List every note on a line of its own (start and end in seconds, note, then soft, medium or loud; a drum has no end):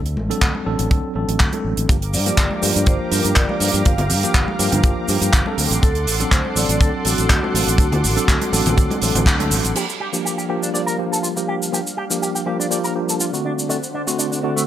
0.00 0.17 D2 medium
0.06 closed hi-hat soft
0.17 0.30 A1 medium
0.17 high conga medium
0.29 0.63 F#3 medium
0.29 0.63 C4 medium
0.29 0.63 D4 medium
0.29 0.63 A4 loud
0.29 muted fingered electric bass stroke soft
0.29 closed hi-hat medium
0.41 0.50 D2 medium
0.41 kick medium
0.41 clap loud
0.41 closed hi-hat medium
0.55 high conga medium
0.65 0.74 A1 medium
0.65 0.88 F#3 medium
0.65 0.88 C4 medium
0.65 0.88 D4 medium
0.65 0.88 A4 medium
0.79 0.86 A1 medium
0.79 closed hi-hat medium
0.90 0.99 D2 medium
0.90 1.12 F#3 medium
0.90 1.12 C4 medium
0.90 1.13 D4 medium
0.90 1.13 A4 medium
0.90 kick loud
0.90 closed hi-hat medium
1.15 1.24 A1 medium
1.15 1.50 F#3 medium
1.15 1.50 C4 medium
1.15 1.50 D4 medium
1.15 1.50 A4 medium
1.28 1.36 A1 medium
1.28 closed hi-hat medium
1.40 1.48 D2 medium
1.40 kick loud
1.40 clap loud
1.40 closed hi-hat medium
1.53 1.86 F#3 medium
1.53 1.86 C4 medium
1.53 1.87 D4 medium
1.53 1.87 A4 medium
1.53 closed hi-hat soft
1.53 high conga medium
1.64 1.73 A1 medium
1.77 1.85 A1 medium
1.77 closed hi-hat medium
1.88 2.15 G1 medium
1.88 1.96 F3 medium
1.88 1.96 A#3 medium
1.88 1.96 D4 medium
1.88 1.96 G4 medium
1.88 5.55 G4 medium
1.88 5.54 F5 medium
1.88 5.54 A#5 medium
1.88 5.55 D6 medium
1.88 kick loud
1.88 closed hi-hat medium
1.88 cabasa soft
2.02 closed hi-hat medium
2.13 2.30 G2 medium
2.13 2.60 D5 medium
2.13 open hi-hat loud
2.13 cabasa medium
2.26 2.60 F3 medium
2.26 2.60 A#3 medium
2.26 2.60 D4 medium
2.26 2.60 G4 loud
2.26 closed hi-hat medium
2.26 cabasa medium
2.37 2.46 G1 medium
2.37 kick loud
2.37 clap loud
2.37 closed hi-hat medium
2.37 cabasa soft
2.51 high conga medium
2.62 2.71 G2 medium
2.62 2.84 F3 medium
2.62 2.84 A#3 medium
2.62 2.84 D4 medium
2.62 2.85 G4 loud
2.62 2.88 D5 medium
2.62 open hi-hat loud
2.62 cabasa medium
2.76 2.83 G2 medium
2.76 closed hi-hat medium
2.76 cabasa medium
2.86 2.95 G1 medium
2.86 3.09 F3 medium
2.86 3.09 A#3 medium
2.86 3.09 D4 medium
2.86 3.09 G4 medium
2.86 3.13 C5 medium
2.86 kick loud
2.86 closed hi-hat medium
2.86 cabasa soft
3.11 3.20 G2 medium
3.11 3.46 F3 medium
3.11 3.46 A#3 medium
3.11 3.47 D4 medium
3.11 3.47 G4 medium
3.11 3.38 A#4 medium
3.11 open hi-hat medium
3.11 cabasa medium
3.25 3.32 G2 medium
3.25 closed hi-hat medium
3.25 cabasa medium
3.36 3.45 G1 medium
3.36 3.88 D5 medium
3.36 kick loud
3.36 clap medium
3.36 closed hi-hat medium
3.36 cabasa soft
3.49 3.83 F3 medium
3.49 3.83 A#3 medium
3.49 3.83 D4 medium
3.49 3.83 G4 medium
3.49 high conga medium
3.60 3.69 G2 medium
3.60 open hi-hat loud
3.60 cabasa medium
3.74 3.81 G2 medium
3.74 closed hi-hat medium
3.74 cabasa medium
3.85 4.11 G1 medium
3.85 3.93 F3 medium
3.85 3.93 A#3 medium
3.85 3.93 D4 medium
3.85 3.93 G4 medium
3.85 5.54 F5 loud
3.85 kick loud
3.85 closed hi-hat medium
3.85 cabasa soft
3.98 closed hi-hat soft
3.98 low conga medium
4.10 4.23 G2 medium
4.10 open hi-hat loud
4.10 cabasa medium
4.23 4.57 F3 medium
4.23 4.57 A#3 medium
4.23 4.57 D4 medium
4.23 4.57 G4 loud
4.23 muted fingered electric bass stroke soft
4.23 closed hi-hat medium
4.23 cabasa medium
4.34 4.43 G1 medium
4.34 kick loud
4.34 clap loud
4.34 closed hi-hat medium
4.34 cabasa medium
4.48 high conga medium
4.59 4.68 G2 medium
4.59 4.81 F3 medium
4.59 4.81 A#3 medium
4.59 4.82 D4 medium
4.59 4.82 G4 loud
4.59 open hi-hat loud
4.59 cabasa medium
4.72 4.80 G2 loud
4.72 closed hi-hat medium
4.72 low conga medium
4.72 cabasa medium
4.83 4.92 G1 medium
4.83 5.06 F3 medium
4.83 5.06 A#3 medium
4.83 5.06 D4 medium
4.83 5.06 G4 medium
4.83 kick loud
4.83 closed hi-hat medium
4.83 cabasa medium
5.08 5.17 G2 medium
5.08 5.43 F3 medium
5.08 5.43 A#3 medium
5.08 5.43 D4 medium
5.08 5.44 G4 medium
5.08 open hi-hat medium
5.08 cabasa medium
5.21 5.29 G2 medium
5.21 closed hi-hat medium
5.21 cabasa medium
5.33 5.42 G1 medium
5.33 kick loud
5.33 clap loud
5.33 closed hi-hat medium
5.33 cabasa medium
5.46 5.80 F#3 medium
5.46 5.80 C4 medium
5.46 5.80 D4 medium
5.46 5.80 A4 medium
5.46 high conga medium
5.57 5.66 D2 medium
5.57 9.71 A4 medium
5.57 9.72 F#5 medium
5.57 9.72 C6 medium
5.57 9.72 D6 medium
5.57 open hi-hat loud
5.57 cabasa medium
5.71 5.78 A1 medium
5.71 closed hi-hat medium
5.71 cabasa medium
5.82 6.07 D2 medium
5.82 5.89 F#3 medium
5.82 5.89 C4 medium
5.82 5.90 D4 medium
5.82 6.33 A4 loud
5.82 5.90 A4 medium
5.82 kick loud
5.82 closed hi-hat medium
5.82 cabasa soft
5.95 closed hi-hat soft
6.07 6.23 A1 medium
6.07 open hi-hat loud
6.07 cabasa medium
6.20 6.53 F#3 medium
6.20 6.53 C4 medium
6.20 6.54 D4 medium
6.20 6.54 A4 loud
6.20 closed hi-hat medium
6.20 cabasa medium
6.31 6.40 D2 loud
6.31 6.57 C5 loud
6.31 kick medium
6.31 clap loud
6.31 closed hi-hat medium
6.31 cabasa soft
6.45 high conga medium
6.56 6.64 A1 medium
6.56 6.78 F#3 medium
6.56 6.78 C4 medium
6.56 6.78 D4 medium
6.56 6.78 A4 loud
6.56 6.81 D5 loud
6.56 open hi-hat loud
6.56 cabasa medium
6.69 6.76 A1 loud
6.69 closed hi-hat medium
6.69 cabasa medium
6.80 6.89 D2 medium
6.80 7.02 F#3 medium
6.80 7.03 C4 medium
6.80 7.03 D4 medium
6.80 7.06 A4 loud
6.80 7.03 A4 medium
6.80 kick loud
6.80 closed hi-hat medium
6.80 cabasa soft
7.05 7.14 A1 medium
7.05 7.40 F#3 medium
7.05 7.40 C4 medium
7.05 7.40 D4 medium
7.05 7.54 F#4 loud
7.05 7.40 A4 medium
7.05 open hi-hat medium
7.05 cabasa medium
7.18 7.26 A1 medium
7.18 closed hi-hat medium
7.18 cabasa medium
7.30 7.38 D2 medium
7.30 kick medium
7.30 clap loud
7.30 closed hi-hat medium
7.30 cabasa soft
7.42 7.76 F#3 medium
7.42 7.76 C4 medium
7.42 7.76 D4 medium
7.42 7.77 A4 medium
7.42 high conga medium
7.54 7.63 A1 medium
7.54 9.23 F#4 medium
7.54 open hi-hat loud
7.54 cabasa medium
7.67 7.75 A1 medium
7.67 closed hi-hat medium
7.67 cabasa medium
7.78 8.05 D2 medium
7.78 7.86 F#3 medium
7.78 7.86 C4 medium
7.78 7.86 D4 medium
7.78 7.86 A4 loud
7.78 kick loud
7.78 closed hi-hat medium
7.78 cabasa soft
7.92 closed hi-hat medium
7.92 low conga medium
8.04 8.16 A1 medium
8.04 open hi-hat medium
8.04 cabasa medium
8.16 8.50 F#3 medium
8.16 8.50 C4 medium
8.16 8.50 D4 medium
8.16 8.50 A4 loud
8.16 muted fingered electric bass stroke soft
8.16 closed hi-hat medium
8.16 cabasa medium
8.28 8.36 D2 loud
8.28 kick medium
8.28 clap loud
8.28 closed hi-hat medium
8.28 cabasa medium
8.41 closed hi-hat medium
8.41 high conga medium
8.52 8.61 A1 medium
8.52 8.74 F#3 medium
8.52 8.74 C4 medium
8.52 8.75 D4 medium
8.52 8.75 A4 loud
8.52 open hi-hat loud
8.52 cabasa medium
8.66 8.73 A1 loud
8.66 closed hi-hat medium
8.66 low conga medium
8.66 cabasa medium
8.77 8.86 D2 medium
8.77 8.99 F#3 medium
8.77 8.99 C4 medium
8.77 8.99 D4 medium
8.77 8.99 A4 medium
8.77 kick loud
8.77 closed hi-hat medium
8.77 cabasa medium
8.91 closed hi-hat medium
8.91 high conga medium
9.01 9.10 A1 medium
9.01 9.36 F#3 medium
9.01 9.37 C4 medium
9.01 9.37 D4 medium
9.01 9.37 A4 medium
9.01 open hi-hat medium
9.01 cabasa medium
9.15 9.22 A1 medium
9.15 closed hi-hat medium
9.15 low conga medium
9.15 cabasa medium
9.26 9.53 D2 loud
9.26 kick loud
9.26 clap loud
9.26 closed hi-hat medium
9.26 cabasa medium
9.39 9.73 F#3 medium
9.39 9.73 C4 medium
9.39 9.73 D4 medium
9.39 9.73 A4 medium
9.39 closed hi-hat medium
9.39 high conga medium
9.51 9.59 A1 loud
9.51 open hi-hat loud
9.51 cabasa medium
9.64 9.71 A1 medium
9.64 closed hi-hat medium
9.64 cabasa medium
9.75 9.83 F3 medium
9.75 13.41 G3 medium
9.75 9.83 A#3 medium
9.75 9.83 D4 medium
9.75 14.67 D4 medium
9.75 9.83 G4 medium
9.75 13.41 F5 medium
9.75 crash medium
9.75 cabasa medium
9.89 cabasa soft
10.00 10.07 G4 medium
10.13 10.47 F3 medium
10.13 10.47 A#3 medium
10.13 10.47 D4 medium
10.13 10.47 G4 medium
10.13 cabasa medium
10.25 10.32 G4 medium
10.25 cabasa medium
10.38 10.44 G4 medium
10.38 cabasa soft
10.49 10.71 F3 medium
10.49 10.71 A#3 medium
10.49 10.71 D4 medium
10.49 10.60 G4 medium
10.49 10.72 G4 medium
10.63 10.69 D4 medium
10.63 cabasa medium
10.74 10.96 F3 medium
10.74 10.96 A#3 medium
10.74 10.96 D4 medium
10.74 10.96 G4 medium
10.74 10.81 D5 medium
10.74 cabasa medium
10.86 10.96 A#4 medium
10.86 cabasa soft
10.98 11.33 F3 medium
10.98 11.33 A#3 medium
10.98 11.34 D4 medium
10.98 11.34 G4 medium
11.12 11.18 A4 medium
11.12 cabasa medium
11.23 11.27 F4 medium
11.23 cabasa medium
11.36 11.70 F3 medium
11.36 11.70 A#3 medium
11.36 11.70 D4 medium
11.36 11.70 G4 medium
11.36 cabasa soft
11.48 11.55 G4 medium
11.62 cabasa medium
11.72 11.80 F3 medium
11.72 11.80 A#3 medium
11.72 11.80 D4 medium
11.72 11.79 G4 medium
11.72 11.80 G4 medium
11.72 cabasa medium
11.87 cabasa soft
11.97 12.04 G4 medium
12.10 12.44 F3 medium
12.10 12.44 A#3 medium
12.10 12.44 D4 medium
12.10 12.44 G4 medium
12.10 cabasa medium
12.22 12.29 G4 medium
12.22 cabasa medium
12.35 12.41 G4 medium
12.35 cabasa soft
12.46 12.68 F3 medium
12.46 12.68 A#3 medium
12.46 12.68 D4 medium
12.46 12.56 G4 medium
12.46 12.69 G4 medium
12.60 12.65 D4 medium
12.60 cabasa medium
12.70 12.93 F3 medium
12.70 12.93 A#3 medium
12.70 12.93 D4 medium
12.70 12.93 G4 medium
12.70 12.78 D5 medium
12.70 cabasa medium
12.84 12.93 A#4 medium
12.84 cabasa soft
12.95 13.30 F3 medium
12.95 13.30 A#3 medium
12.95 13.30 D4 medium
12.95 13.30 G4 medium
13.09 13.15 A4 medium
13.09 cabasa medium
13.20 13.24 F4 medium
13.20 cabasa medium
13.32 13.66 D3 medium
13.32 13.66 A3 medium
13.32 13.67 C4 medium
13.32 13.67 F#4 medium
13.32 cabasa soft
13.45 14.67 D3 medium
13.45 13.51 D4 medium
13.45 14.67 C5 medium
13.45 14.67 F#5 medium
13.59 cabasa medium
13.69 13.76 D3 medium
13.69 13.76 A3 medium
13.69 13.77 C4 medium
13.69 13.76 D4 medium
13.69 13.77 F#4 medium
13.69 cabasa medium
13.83 cabasa soft
13.94 14.01 D4 medium
14.07 14.40 D3 medium
14.07 14.40 A3 medium
14.07 14.41 C4 medium
14.07 14.41 F#4 medium
14.07 cabasa medium
14.19 14.25 D4 medium
14.19 cabasa medium
14.32 14.37 D4 medium
14.32 cabasa soft
14.43 14.65 D3 medium
14.43 14.65 A3 medium
14.43 14.65 C4 medium
14.43 14.53 D4 medium
14.43 14.66 F#4 medium
14.56 14.62 A3 medium
14.56 cabasa medium